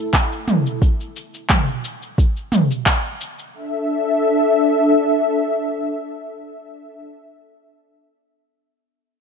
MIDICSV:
0, 0, Header, 1, 3, 480
1, 0, Start_track
1, 0, Tempo, 681818
1, 574, Time_signature, 4, 2, 24, 8
1, 6478, End_track
2, 0, Start_track
2, 0, Title_t, "Analog synth pad"
2, 0, Program_c, 0, 89
2, 0, Note_on_c, 0, 57, 74
2, 0, Note_on_c, 0, 64, 76
2, 0, Note_on_c, 0, 69, 91
2, 546, Note_off_c, 0, 64, 0
2, 547, Note_off_c, 0, 69, 0
2, 548, Note_off_c, 0, 57, 0
2, 2493, Note_on_c, 0, 69, 68
2, 2493, Note_on_c, 0, 76, 92
2, 2494, Note_on_c, 0, 62, 82
2, 4949, Note_off_c, 0, 62, 0
2, 4949, Note_off_c, 0, 69, 0
2, 4949, Note_off_c, 0, 76, 0
2, 6478, End_track
3, 0, Start_track
3, 0, Title_t, "Drums"
3, 95, Note_on_c, 9, 36, 102
3, 96, Note_on_c, 9, 39, 92
3, 101, Note_on_c, 9, 69, 39
3, 165, Note_off_c, 9, 36, 0
3, 166, Note_off_c, 9, 39, 0
3, 171, Note_off_c, 9, 69, 0
3, 228, Note_on_c, 9, 69, 22
3, 298, Note_off_c, 9, 69, 0
3, 335, Note_on_c, 9, 45, 76
3, 340, Note_on_c, 9, 69, 67
3, 406, Note_off_c, 9, 45, 0
3, 410, Note_off_c, 9, 69, 0
3, 467, Note_on_c, 9, 69, 31
3, 537, Note_off_c, 9, 69, 0
3, 575, Note_on_c, 9, 36, 92
3, 579, Note_on_c, 9, 69, 43
3, 646, Note_off_c, 9, 36, 0
3, 650, Note_off_c, 9, 69, 0
3, 707, Note_on_c, 9, 69, 21
3, 777, Note_off_c, 9, 69, 0
3, 819, Note_on_c, 9, 69, 71
3, 889, Note_off_c, 9, 69, 0
3, 945, Note_on_c, 9, 69, 30
3, 1015, Note_off_c, 9, 69, 0
3, 1052, Note_on_c, 9, 39, 94
3, 1052, Note_on_c, 9, 45, 73
3, 1055, Note_on_c, 9, 36, 101
3, 1057, Note_on_c, 9, 69, 39
3, 1123, Note_off_c, 9, 39, 0
3, 1123, Note_off_c, 9, 45, 0
3, 1126, Note_off_c, 9, 36, 0
3, 1128, Note_off_c, 9, 69, 0
3, 1186, Note_on_c, 9, 69, 20
3, 1256, Note_off_c, 9, 69, 0
3, 1299, Note_on_c, 9, 69, 73
3, 1369, Note_off_c, 9, 69, 0
3, 1425, Note_on_c, 9, 69, 30
3, 1495, Note_off_c, 9, 69, 0
3, 1536, Note_on_c, 9, 36, 93
3, 1538, Note_on_c, 9, 69, 40
3, 1606, Note_off_c, 9, 36, 0
3, 1608, Note_off_c, 9, 69, 0
3, 1665, Note_on_c, 9, 69, 20
3, 1736, Note_off_c, 9, 69, 0
3, 1774, Note_on_c, 9, 45, 77
3, 1778, Note_on_c, 9, 69, 71
3, 1844, Note_off_c, 9, 45, 0
3, 1849, Note_off_c, 9, 69, 0
3, 1906, Note_on_c, 9, 69, 31
3, 1976, Note_off_c, 9, 69, 0
3, 2015, Note_on_c, 9, 36, 101
3, 2015, Note_on_c, 9, 39, 96
3, 2020, Note_on_c, 9, 69, 40
3, 2085, Note_off_c, 9, 39, 0
3, 2086, Note_off_c, 9, 36, 0
3, 2090, Note_off_c, 9, 69, 0
3, 2147, Note_on_c, 9, 69, 21
3, 2218, Note_off_c, 9, 69, 0
3, 2260, Note_on_c, 9, 69, 72
3, 2330, Note_off_c, 9, 69, 0
3, 2386, Note_on_c, 9, 69, 31
3, 2457, Note_off_c, 9, 69, 0
3, 6478, End_track
0, 0, End_of_file